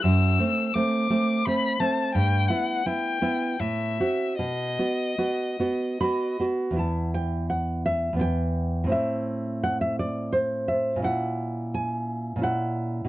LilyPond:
<<
  \new Staff \with { instrumentName = "Violin" } { \time 3/4 \key e \minor \tempo 4 = 85 e'''4 d'''4 b''8 a''8 | g''8 fis''8 g''4 e''4 | dis''2~ dis''8 r8 | r2. |
r2. | r2. | }
  \new Staff \with { instrumentName = "Nylon-string guitar" } { \time 3/4 \key e \minor << { r2. | r2. | r2 b''4 | a''8 g''8 fis''8 e''8 g''4 |
e''4 fis''16 e''16 d''8 c''8 e''8 | fis''4 gis''4 fis''4 | } \\ { fis,8 <a c'>8 <a c'>8 <a c'>8 <a c'>8 <a c'>8 | g,8 <b e'>8 <b e'>8 <b e'>8 a,8 <c' fis'>8 | b,8 <b fis'>8 <b fis'>8 <b fis'>8 <b fis'>8 <b fis'>8 | <e, b e'>2 <e, b e'>4 |
<a, c' e'>2. | <ais, cis' e'>2 <ais, cis' e'>4 | } >> }
>>